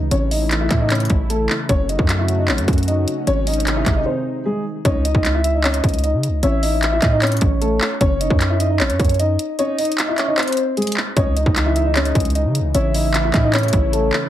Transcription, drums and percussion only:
0.11 closed hi-hat
0.31 open hi-hat
0.51 clap, closed hi-hat
0.71 kick, clap, closed hi-hat
0.90 clap, closed hi-hat
0.95 closed hi-hat
1.00 closed hi-hat
1.05 closed hi-hat
1.10 kick, closed hi-hat
1.30 closed hi-hat
1.49 clap
1.69 kick, closed hi-hat
1.89 closed hi-hat
1.99 kick
2.09 clap, closed hi-hat
2.28 closed hi-hat
2.48 clap, closed hi-hat
2.58 closed hi-hat
2.68 kick, closed hi-hat
2.73 closed hi-hat
2.78 closed hi-hat
2.83 closed hi-hat
2.88 closed hi-hat
3.08 closed hi-hat
3.27 closed hi-hat
3.47 closed hi-hat, open hi-hat
3.54 closed hi-hat
3.60 closed hi-hat
3.67 clap, closed hi-hat
3.86 kick, clap, closed hi-hat
4.85 kick, closed hi-hat
5.05 closed hi-hat
5.15 kick
5.25 clap, closed hi-hat
5.44 closed hi-hat
5.64 clap, closed hi-hat
5.74 closed hi-hat
5.84 kick, closed hi-hat
5.89 closed hi-hat
5.94 closed hi-hat
5.99 closed hi-hat
6.04 closed hi-hat
6.23 closed hi-hat
6.43 closed hi-hat
6.63 open hi-hat
6.82 clap, closed hi-hat
7.02 kick, clap, closed hi-hat
7.22 clap, closed hi-hat
7.27 closed hi-hat
7.32 closed hi-hat
7.37 closed hi-hat
7.41 kick, closed hi-hat
7.62 closed hi-hat
7.81 clap
8.01 kick, closed hi-hat
8.21 closed hi-hat
8.30 kick
8.40 clap, closed hi-hat
8.60 closed hi-hat
8.80 clap, closed hi-hat
8.90 closed hi-hat
9.00 kick, closed hi-hat
9.05 closed hi-hat
9.09 closed hi-hat
9.14 closed hi-hat
9.20 closed hi-hat
9.39 closed hi-hat
9.59 closed hi-hat
9.79 closed hi-hat, open hi-hat
9.85 closed hi-hat
9.92 closed hi-hat
9.98 clap, closed hi-hat
10.18 clap, closed hi-hat
10.38 clap, closed hi-hat
10.43 closed hi-hat
10.48 closed hi-hat
10.52 closed hi-hat
10.57 closed hi-hat
10.77 closed hi-hat
10.82 closed hi-hat
10.87 closed hi-hat
10.92 closed hi-hat
10.97 clap
11.17 kick, closed hi-hat
11.37 closed hi-hat
11.46 kick
11.56 clap, closed hi-hat
11.76 closed hi-hat
11.96 clap, closed hi-hat
12.05 closed hi-hat
12.15 kick, closed hi-hat
12.20 closed hi-hat
12.25 closed hi-hat
12.30 closed hi-hat
12.35 closed hi-hat
12.55 closed hi-hat
12.75 closed hi-hat
12.94 open hi-hat
13.14 clap, closed hi-hat
13.34 kick, clap, closed hi-hat
13.53 clap, closed hi-hat
13.58 closed hi-hat
13.63 closed hi-hat
13.68 closed hi-hat
13.73 kick, closed hi-hat
13.93 closed hi-hat
14.13 clap

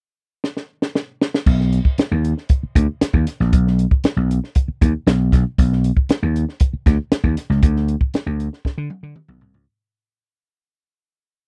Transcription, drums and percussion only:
0.44 snare
0.57 snare
0.82 snare
0.95 snare
1.21 snare
1.34 snare
1.46 kick, crash
1.61 snare
1.73 closed hi-hat
1.85 kick
1.98 snare, closed hi-hat
2.25 closed hi-hat
2.38 snare
2.49 kick, closed hi-hat
2.75 kick, closed hi-hat
3.01 snare, closed hi-hat
3.13 kick
3.27 snare, closed hi-hat
3.40 snare
3.53 kick, closed hi-hat
3.67 snare
3.79 closed hi-hat
3.91 kick
4.04 snare, closed hi-hat
4.31 closed hi-hat
4.44 snare
4.55 kick, closed hi-hat
4.81 kick, closed hi-hat
5.07 snare, closed hi-hat
5.32 kick, snare, closed hi-hat
5.58 kick, closed hi-hat
5.72 snare
5.84 closed hi-hat
5.97 kick
6.09 snare, closed hi-hat
6.36 closed hi-hat
6.49 snare
6.60 kick, closed hi-hat
6.86 kick, snare, closed hi-hat
7.12 snare, closed hi-hat
7.24 kick
7.37 snare, closed hi-hat
7.51 snare
7.63 kick, closed hi-hat
7.76 snare
7.88 closed hi-hat
8.01 kick
8.14 snare, closed hi-hat
8.40 closed hi-hat
8.53 snare
8.65 kick, snare
8.90 high tom
9.16 mid tom
9.29 mid tom
9.41 floor tom
9.54 floor tom

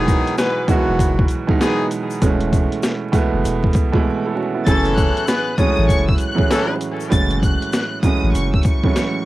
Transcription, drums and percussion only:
0.08 kick, closed hi-hat, shaker
0.27 closed hi-hat
0.38 snare, closed hi-hat, shaker
0.68 kick, closed hi-hat, shaker
0.99 kick, closed hi-hat, shaker
1.19 kick
1.28 closed hi-hat, shaker
1.49 kick
1.61 snare, closed hi-hat, shaker
1.91 closed hi-hat, shaker
2.10 shaker
2.22 kick, closed hi-hat, shaker
2.41 closed hi-hat
2.53 kick, closed hi-hat, shaker
2.72 closed hi-hat
2.83 snare, closed hi-hat, shaker
3.13 kick, closed hi-hat, shaker
3.45 closed hi-hat, shaker
3.64 kick
3.73 kick, closed hi-hat, shaker
3.94 kick
4.67 kick, closed hi-hat, shaker
4.85 closed hi-hat
4.98 kick, closed hi-hat, shaker
5.17 closed hi-hat
5.28 snare, closed hi-hat, shaker
5.58 kick, closed hi-hat, shaker
5.89 kick, closed hi-hat, shaker
6.09 kick
6.18 closed hi-hat, shaker
6.38 kick
6.51 snare, closed hi-hat, shaker
6.81 closed hi-hat, shaker
7.00 shaker
7.12 kick, closed hi-hat, shaker
7.30 closed hi-hat
7.43 kick, closed hi-hat, shaker
7.62 closed hi-hat
7.73 snare, closed hi-hat, shaker
8.03 kick, closed hi-hat, shaker
8.35 closed hi-hat, shaker
8.54 kick
8.63 kick, closed hi-hat, shaker
8.84 kick
8.96 snare, closed hi-hat, shaker

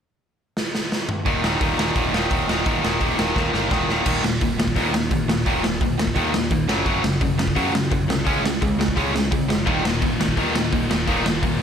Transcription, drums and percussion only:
0.57 snare
0.75 snare
0.92 snare
1.09 mid tom
1.26 kick, open hi-hat
1.44 snare
1.61 kick, open hi-hat
1.79 snare
1.96 kick, open hi-hat
2.14 snare
2.31 kick, open hi-hat
2.49 snare
2.66 kick, open hi-hat
2.85 snare
3.01 kick, open hi-hat
3.19 snare
3.36 kick, snare
3.54 snare
3.71 kick, snare
3.89 snare
4.06 kick, crash
4.24 snare
4.41 kick, open hi-hat
4.60 snare
4.68 kick
4.76 kick, open hi-hat
4.94 snare
5.11 kick, open hi-hat
5.29 snare
5.46 kick, open hi-hat
5.64 snare
5.81 kick, open hi-hat
5.99 snare
6.07 kick
6.16 kick, open hi-hat
6.34 snare
6.51 kick, open hi-hat
6.69 snare
6.86 kick, open hi-hat
7.04 snare
7.21 kick, open hi-hat
7.39 snare
7.47 kick
7.56 kick, open hi-hat
7.75 snare
7.92 kick, open hi-hat
8.10 snare
8.26 kick, open hi-hat
8.46 snare
8.62 kick, open hi-hat
8.81 snare
8.88 kick
8.97 kick, open hi-hat
9.16 snare
9.32 kick, open hi-hat
9.50 snare
9.67 kick, open hi-hat
9.85 snare
10.02 kick, open hi-hat
10.21 snare
10.29 kick
10.37 kick, open hi-hat
10.56 snare
10.73 kick, open hi-hat
10.91 snare
11.08 kick, open hi-hat
11.26 snare
11.43 kick, open hi-hat

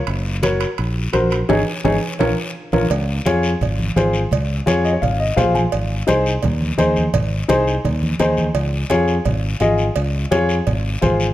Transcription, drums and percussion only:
0.07 high timbale, long guiro
0.43 high conga, high timbale, short guiro
0.60 high timbale, short guiro
0.78 high conga, high timbale, long guiro
1.13 high conga, high timbale, short guiro
1.31 high timbale, short guiro
1.49 high conga, high timbale, long guiro
1.85 high conga, high timbale
2.19 high conga, high timbale, long guiro
2.72 high conga, high timbale, long guiro
2.90 cowbell, long guiro
3.09 high conga
3.25 cowbell, high conga, short guiro
3.43 short guiro
3.61 cowbell, high conga, low conga, long guiro
3.79 high conga
3.96 cowbell, high conga, short guiro
4.13 short guiro
4.31 cowbell, low conga, long guiro
4.50 high conga
4.67 cowbell, high conga, short guiro
4.85 short guiro
5.02 cowbell, high conga, low conga, long guiro
5.37 cowbell, high conga, low conga, low timbale, short guiro
5.55 high conga, short guiro
5.72 cowbell, long guiro
5.91 high conga
6.08 cowbell, high conga, short guiro
6.26 short guiro
6.43 cowbell, high conga, low conga, long guiro
6.62 high conga
6.79 cowbell, high conga, short guiro
6.96 high conga, short guiro
7.14 cowbell, low conga, long guiro
7.32 high conga
7.49 cowbell, high conga, short guiro
7.67 short guiro
7.85 cowbell, high conga, low conga, long guiro
8.03 high conga
8.20 cowbell, high conga, short guiro
8.37 high conga, short guiro
8.55 cowbell, long guiro
8.74 high conga
8.90 cowbell, high conga, short guiro
9.08 short guiro
9.25 cowbell, high conga, low conga, long guiro
9.60 cowbell, high conga, short guiro
9.78 short guiro
9.95 cowbell, long guiro
10.15 high conga
10.32 cowbell, high conga, short guiro
10.49 short guiro
10.67 cowbell, high conga, low conga, long guiro
11.02 cowbell, high conga, low conga, short guiro
11.20 short guiro

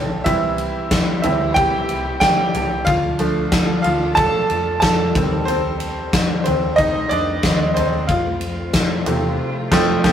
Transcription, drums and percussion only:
0.26 kick, ride
0.58 ride
0.91 kick, snare, ride
1.23 floor tom, ride
1.56 kick, ride
1.89 ride
2.21 kick, snare, ride
2.54 floor tom, ride
2.87 kick, ride
3.19 ride
3.52 kick, snare, ride
3.84 ride
4.17 kick, ride
4.50 ride
4.82 kick, snare, ride
5.15 kick, floor tom, ride
5.48 ride
5.80 ride
6.13 kick, snare, ride
6.45 floor tom, ride
6.78 kick, ride
7.11 ride
7.43 kick, snare, ride
7.76 floor tom, ride
8.09 kick, ride
8.41 ride
8.73 kick, snare, ride
9.06 ride
9.72 kick, snare, crash
10.04 kick, snare, crash

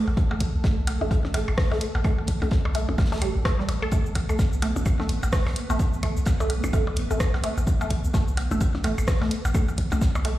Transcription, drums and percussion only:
0.08 percussion blips
0.17 kick, closed hi-hat
0.31 percussion blips
0.40 kick, closed hi-hat
0.64 kick, snare, closed hi-hat, percussion blips
0.87 closed hi-hat, percussion blips
1.01 percussion blips
1.11 kick, closed hi-hat, percussion blips
1.24 snare, percussion blips
1.34 closed hi-hat, percussion blips
1.48 percussion blips
1.58 kick, cross-stick, snare, open hi-hat
1.72 snare, percussion blips
1.81 closed hi-hat
1.95 percussion blips
2.04 kick, closed hi-hat, percussion blips
2.18 percussion blips
2.27 kick, closed hi-hat
2.42 closed hi-hat, percussion blips
2.51 kick, snare, closed hi-hat
2.65 percussion blips
2.75 closed hi-hat, percussion blips
2.89 percussion blips
2.98 kick, snare, closed hi-hat, percussion blips
3.06 snare, closed hi-hat
3.12 snare, closed hi-hat, percussion blips
3.16 snare, closed hi-hat
3.21 closed hi-hat, percussion blips
3.45 kick, cross-stick, snare, closed hi-hat, percussion blips
3.59 snare
3.69 closed hi-hat, percussion blips
3.82 percussion blips
3.91 kick, closed hi-hat, cabasa, percussion blips
4.06 cabasa
4.15 kick, closed hi-hat, percussion blips
4.29 cabasa, percussion blips
4.39 kick, snare, closed hi-hat, cabasa, percussion blips
4.53 cabasa
4.62 closed hi-hat, percussion blips
4.76 percussion blips, cabasa
4.85 kick, closed hi-hat, cabasa, percussion blips
5.00 snare, percussion blips
5.09 closed hi-hat
5.23 cabasa, percussion blips
5.32 kick, cross-stick, snare, open hi-hat, cabasa
5.47 snare, percussion blips
5.56 closed hi-hat
5.70 cabasa, percussion blips
5.79 kick, closed hi-hat, cabasa
5.93 cabasa
6.03 kick, closed hi-hat, percussion blips
6.17 closed hi-hat, cabasa
6.26 kick, snare, closed hi-hat, cabasa, percussion blips
6.40 cabasa, percussion blips
6.50 closed hi-hat, percussion blips
6.64 percussion blips, cabasa
6.73 kick, closed hi-hat, cabasa, percussion blips
6.87 percussion blips
6.96 closed hi-hat
7.11 cabasa, percussion blips
7.20 kick, cross-stick, snare, closed hi-hat, cabasa, percussion blips
7.34 snare, percussion blips
7.44 closed hi-hat, percussion blips
7.58 cabasa, percussion blips
7.67 kick, closed hi-hat, cabasa
7.81 cabasa, percussion blips
7.90 kick, closed hi-hat
8.04 cabasa
8.13 kick, snare, closed hi-hat, cabasa, percussion blips
8.28 cabasa
8.37 closed hi-hat, percussion blips
8.51 percussion blips, cabasa
8.61 kick, closed hi-hat, cabasa, percussion blips
8.74 snare, percussion blips
8.84 closed hi-hat, percussion blips
8.98 cabasa, percussion blips
9.07 kick, cross-stick, snare, open hi-hat, cabasa
9.22 snare, percussion blips
9.31 closed hi-hat
9.45 cabasa, percussion blips
9.55 kick, closed hi-hat, cabasa, percussion blips
9.68 cabasa, percussion blips
9.78 kick, closed hi-hat
9.91 closed hi-hat, percussion blips, cabasa
10.01 kick, snare, closed hi-hat, cabasa
10.15 cabasa, percussion blips
10.25 closed hi-hat, percussion blips

